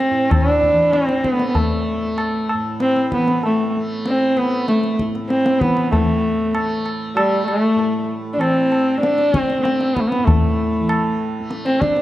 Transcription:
0.00 0.10 A2 medium
0.00 0.71 E3 medium
0.00 1.32 A3 medium
0.00 0.31 C4 medium
0.00 tabla te soft
0.10 2.54 A2 medium
0.31 0.50 C4 loud
0.31 tabla na medium
0.31 tabla ge medium
0.50 0.95 D4 loud
0.62 tabla ge soft
0.71 3.15 E3 medium
0.93 1.26 C4 medium
0.93 tabla te medium
1.09 tabla te medium
1.24 1.48 B3 medium
1.24 tabla ke medium
1.32 1.94 A3 medium
1.40 tabla te medium
1.49 1.58 B3 medium
1.55 2.50 A3 medium
1.55 tabla tin medium
1.55 tabla ge medium
1.94 3.77 A3 medium
2.18 tabla na medium
2.49 tabla na medium
2.54 4.99 A2 medium
2.80 3.10 C4 medium
2.80 tabla te medium
2.97 tabla te medium
3.12 5.61 E3 medium
3.12 3.42 B3 medium
3.12 tabla ke medium
3.28 tabla te medium
3.43 3.73 A3 medium
3.43 tabla tin medium
3.77 4.36 A3 medium
4.06 4.39 C4 medium
4.06 tabla te medium
4.36 6.54 A3 medium
4.36 4.68 B3 medium
4.36 tabla te medium
4.68 4.97 A3 medium
4.68 tabla te medium
4.84 tabla te medium
4.99 7.75 A2 medium
4.99 tabla ke medium
5.15 tabla te soft
5.30 5.61 C4 medium
5.30 tabla te medium
5.46 tabla te medium
5.60 5.93 E3 medium
5.60 5.91 B3 medium
5.60 tabla ke soft
5.77 tabla te medium
5.92 8.37 E3 medium
5.92 6.81 A3 medium
5.92 tabla tin medium
5.92 tabla ge medium
6.54 7.16 A3 medium
6.54 tabla na medium
6.86 tabla na medium
7.16 7.45 G3 medium
7.16 8.98 A3 medium
7.16 tabla na medium
7.47 8.05 A3 medium
7.47 tabla na medium
7.75 10.18 A2 soft
7.75 tabla tin medium
8.33 10.79 E3 medium
8.33 8.42 D4 medium
8.40 9.01 C4 medium
8.40 tabla na medium
8.72 tabla na medium
8.98 9.59 A3 medium
8.98 9.40 D4 loud
9.03 tabla te medium
9.18 tabla te medium
9.34 tabla ke medium
9.40 9.63 C4 loud
9.50 tabla te medium
9.59 11.40 A3 medium
9.63 9.95 C4 medium
9.63 tabla te medium
9.81 tabla te medium
9.94 10.02 B3 medium
9.94 tabla ke medium
10.01 10.09 A3 medium
10.07 10.26 B3 medium
10.12 tabla te medium
10.18 12.02 A2 medium
10.24 11.18 A3 medium
10.24 tabla tin loud
10.24 tabla ge medium
10.79 12.02 E3 medium
10.89 tabla na medium
11.40 12.02 A3 medium
11.51 tabla te medium
11.66 11.82 C4 medium
11.66 tabla te medium
11.80 12.02 D4 medium
11.80 tabla ke medium
11.97 tabla te medium

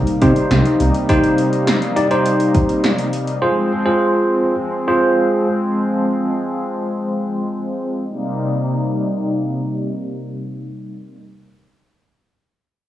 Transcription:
0.00 3.38 C3 medium
0.00 3.38 G3 medium
0.00 3.38 A#3 medium
0.00 3.38 D#4 medium
0.07 closed hi-hat medium
0.21 0.33 C3 loud
0.21 0.80 D#4 medium
0.21 0.80 G4 medium
0.21 0.80 C5 medium
0.21 kick medium
0.21 closed hi-hat medium
0.36 closed hi-hat soft
0.51 0.62 C2 loud
0.51 snare loud
0.51 closed hi-hat medium
0.65 closed hi-hat medium
0.80 0.91 C2 loud
0.80 closed hi-hat medium
0.94 closed hi-hat medium
1.09 1.68 D#4 medium
1.09 1.68 G4 medium
1.09 1.68 C5 medium
1.09 kick loud
1.09 closed hi-hat medium
1.23 closed hi-hat medium
1.38 closed hi-hat medium
1.53 closed hi-hat soft
1.67 snare loud
1.67 closed hi-hat medium
1.82 closed hi-hat medium
1.96 2.06 D#4 medium
1.96 2.06 G4 medium
1.96 2.06 D5 medium
1.96 closed hi-hat medium
2.11 2.89 D#4 medium
2.11 2.89 G4 medium
2.11 2.89 C5 medium
2.11 closed hi-hat soft
2.26 closed hi-hat medium
2.40 closed hi-hat medium
2.55 kick medium
2.55 closed hi-hat medium
2.69 closed hi-hat soft
2.84 snare loud
2.84 closed hi-hat medium
2.98 closed hi-hat medium
3.13 closed hi-hat medium
3.27 closed hi-hat soft
3.42 8.04 F3 medium
3.42 8.04 G#3 medium
3.42 8.04 C4 medium
3.42 3.71 F4 medium
3.42 3.71 G#4 medium
3.42 3.71 C5 medium
3.86 4.54 F4 medium
3.86 4.54 G#4 medium
3.86 4.54 C5 medium
4.88 5.46 F4 medium
4.88 5.46 G#4 medium
4.88 5.46 C5 medium
8.08 11.17 C3 medium
8.08 11.17 G3 medium
8.08 11.17 A#3 medium
8.08 11.17 D#4 medium

